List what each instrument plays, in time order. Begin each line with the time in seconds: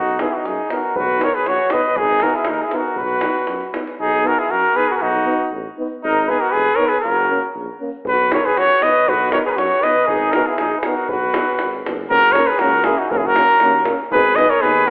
Already playing: tuba B1, flugelhorn D#4, trumpet F#4
0.07 davul high
0.19 trombone B3, euphonium D#4, flugelhorn E4, trumpet G#4, davul high
0.33 flugelhorn D#4, trumpet F#4
0.44 tuba F#2, flugelhorn D#4, trumpet G#4, davul high
0.69 trombone B3, euphonium D#4, trumpet A#4, davul high
0.75 flugelhorn F#4
0.95 tuba B1, flugelhorn F#4, trumpet B4, davul low
1.09 davul high
1.19 trombone B3, euphonium D#4, davul high
1.24 flugelhorn A#4, trumpet C#5
1.34 flugelhorn G#4, trumpet B4
1.45 tuba A#1, trumpet C#5, davul high
1.49 flugelhorn F#4
1.70 trombone B3, euphonium D#4, flugelhorn B4, trumpet D#5, davul high
1.96 tuba G#1, flugelhorn D#4, trumpet G#4, davul low
2.09 davul high
2.20 trombone B3, euphonium D#4, trumpet A#4, davul high
2.24 flugelhorn F#4
2.35 flugelhorn E4, trumpet G#4
2.45 tuba D#2, trumpet A#4, davul high
2.50 flugelhorn D#4
2.62 flugelhorn E4, trumpet G#4
2.71 trombone B3, euphonium D#4, trumpet A#4, davul high
2.77 flugelhorn F#4
2.96 tuba B1, trumpet B4, davul low
3.03 flugelhorn F#4
3.08 davul high
3.21 trombone B3, euphonium D#4, davul high
3.34 davul high
3.47 tuba F#2, davul high
3.60 davul high
3.74 trombone B3, euphonium D#4, davul high
3.87 davul high
3.99 tuba B1, flugelhorn D#4, trumpet G#4
4.24 trombone B3, euphonium D#4, flugelhorn F#4, trumpet A#4
4.39 flugelhorn E4, trumpet G#4
4.50 tuba F#2, flugelhorn F#4, trumpet A#4
4.75 trombone B3, euphonium D#4, flugelhorn G#4, trumpet B4
4.88 flugelhorn F#4, trumpet A#4 B4
4.93 flugelhorn F#4 G#4, trumpet A#4
5.01 tuba B1, flugelhorn D#4, trumpet F#4
5.25 trombone B3, euphonium D#4
5.51 tuba A1
5.78 trombone B3, euphonium D#4
6.04 tuba G#1, flugelhorn D#4, trumpet A#4
6.27 trombone B3, euphonium D#4, flugelhorn G#4, trumpet B4
6.38 flugelhorn F#4, trumpet A#4
6.50 tuba F1, flugelhorn G#4, trumpet B4
6.76 trombone B3, euphonium D#4, flugelhorn A#4, trumpet C#5
6.86 flugelhorn G#4, trumpet B4
7.00 tuba F#1, flugelhorn F#4, trumpet A#4
7.29 trombone A#3, euphonium C#4
7.55 tuba A#1
7.80 trombone A#3, euphonium C#4
8.05 tuba B1, trumpet B4, davul low
8.10 flugelhorn F#4
8.19 davul high
8.30 trombone B3, euphonium D#4, trumpet C#5, davul high
8.34 flugelhorn A#4
8.45 flugelhorn G#4, trumpet B4
8.55 tuba F#2, flugelhorn F#4, trumpet C#5, davul high
8.80 trombone B3, euphonium D#4, flugelhorn B4, trumpet D#5, davul high
9.07 tuba B1, flugelhorn F#4, trumpet B4, davul low
9.21 davul high
9.30 trombone B3, euphonium D#4, flugelhorn A#4, trumpet C#5, davul high
9.45 flugelhorn G#4, trumpet A#4 B4
9.50 flugelhorn G#4, trumpet B4
9.56 tuba F#2, flugelhorn F#4, trumpet C#5, davul high
9.82 trombone B3, euphonium D#4, flugelhorn B4, trumpet D#5, davul high
10.07 tuba G#1, flugelhorn D#4, trumpet G#4, davul low
10.21 davul high
10.32 trombone B3, euphonium D#4, trumpet A#4, davul high
10.36 flugelhorn F#4
10.47 flugelhorn E4, trumpet G#4
10.58 tuba A#1, flugelhorn D#4, trumpet G#4, davul high
10.78 flugelhorn G#4, trumpet B4
10.83 trombone B3, euphonium D#4, trumpet A#4, davul high
10.87 flugelhorn F#4
11.08 tuba B1, flugelhorn F#4, trumpet B4, davul low
11.34 trombone B3, euphonium D#4, davul high
11.47 davul high
11.59 tuba G#1, davul high
11.73 davul high
11.84 tuba F#1, trombone B3, euphonium D#4, davul high
12.09 tuba F#1, trombone A#3, euphonium C#4, flugelhorn F#4, trumpet A#4, davul low
12.23 davul high
12.32 trumpet C#5, davul high
12.37 trombone A#3, euphonium C#4, flugelhorn A#4
12.47 flugelhorn G#4, trumpet B4
12.59 tuba C#2, trombone A#3, euphonium C#4, flugelhorn F#4, trumpet A#4, davul high
12.72 davul high
12.84 trombone A#3, euphonium C#4, flugelhorn E4, trumpet G#4, davul high
12.98 flugelhorn D#4, trumpet F#4, davul high
13.10 tuba F#1, trombone A#3, euphonium C#4, flugelhorn F#4, trumpet A#4, davul low
13.17 flugelhorn E4, trumpet G#4
13.26 flugelhorn F#4, trumpet A#4
13.35 trombone A#3, euphonium C#4, davul high
13.60 tuba D#2, trombone A#3, euphonium C#4, davul high
13.73 davul high
13.83 trombone A#3, euphonium C#4, davul high
14.11 tuba G#1, trombone B3, euphonium D#4, flugelhorn G#4, trumpet B4, davul low
14.26 davul high
14.36 trombone B3, euphonium D#4, flugelhorn B4, trumpet D#5, davul high
14.50 flugelhorn A#4, trumpet C#5
14.61 tuba D#2, trombone B3, euphonium D#4, flugelhorn G#4, trumpet B4, davul high
14.75 davul high
14.85 trombone B3, flugelhorn F#4